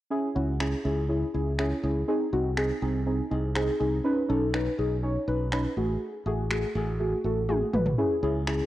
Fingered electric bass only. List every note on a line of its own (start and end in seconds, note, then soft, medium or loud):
0.36 0.73 C#2 medium
0.85 1.23 C#2 medium
1.34 1.72 C#2 medium
1.83 2.02 C#2 medium
2.33 2.70 C2 medium
2.82 3.19 C2 medium
3.31 3.69 C2 medium
3.80 3.99 C2 medium
4.30 4.67 B1 medium
4.79 5.16 B1 medium
5.28 5.65 B1 medium
5.77 5.96 A1 medium
6.26 6.63 A1 medium
6.75 7.13 A1 medium
7.24 7.62 A1 medium
7.74 7.92 A1 medium
8.23 8.60 C#2 medium